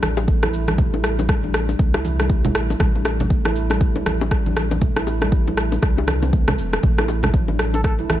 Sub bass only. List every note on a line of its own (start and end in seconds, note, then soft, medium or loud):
0.02 1.75 A1 medium
1.79 2.51 C2 medium
2.55 2.75 A1 medium
2.80 4.02 A1 loud
4.06 5.78 A1 medium
5.82 6.60 C2 loud
6.58 6.78 E1 medium
6.83 8.05 A1 medium
8.09 8.20 A1 medium